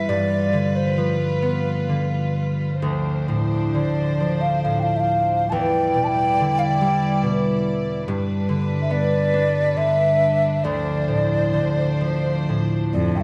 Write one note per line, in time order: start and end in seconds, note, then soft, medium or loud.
0.00 0.13 E3 soft
0.00 0.13 G3 soft
0.00 2.77 G3 medium
0.00 1.42 B3 soft
0.00 2.76 B4 medium
0.00 0.10 E5 medium
0.09 2.85 G2 medium
0.09 2.78 F4 medium
0.09 0.77 D5 medium
0.53 1.88 D3 soft
0.76 1.00 C5 medium
0.98 1.93 F3 soft
0.98 2.34 B4 medium
1.42 4.53 B3 soft
1.89 2.85 D3 soft
2.81 5.55 D2 medium
2.81 5.48 F3 medium
2.81 5.48 D4 medium
2.81 5.48 C5 medium
3.28 3.78 A2 soft
3.73 4.67 D3 soft
3.73 4.42 D5 medium
4.20 5.55 F3 soft
4.41 4.62 F5 medium
4.62 5.55 A2 soft
4.62 4.80 F5 medium
4.79 4.97 F5 medium
4.79 4.84 G5 medium
4.96 5.01 E5 medium
4.96 5.51 F5 medium
5.49 8.10 E2 medium
5.49 8.03 G3 medium
5.49 8.02 E4 medium
5.49 8.02 D5 medium
5.49 6.06 G5 medium
5.49 5.54 A5 medium
5.94 6.41 B2 soft
6.04 6.60 G5 medium
6.04 6.08 A5 medium
6.40 7.26 D3 soft
6.59 6.67 F5 medium
6.65 7.21 G5 medium
6.81 8.10 G3 medium
7.23 8.10 B2 soft
8.04 10.59 G3 medium
8.04 13.23 D4 medium
8.04 10.59 B4 medium
8.08 10.66 G2 medium
8.49 9.75 D3 soft
8.82 8.93 E5 medium
8.90 12.01 B3 medium
8.90 9.78 D5 medium
9.34 12.13 D4 medium
9.77 10.66 D3 soft
9.77 10.65 E5 loud
10.59 13.23 F3 medium
10.59 13.23 C5 medium
10.64 13.23 D2 medium
10.64 12.48 D5 medium
11.08 11.57 A2 soft
11.53 12.52 D3 soft
12.01 13.23 F3 soft
12.49 13.23 A2 soft
12.93 13.19 F2 medium
12.93 13.17 D5 medium
13.16 13.23 G2 soft
13.16 13.21 G5 medium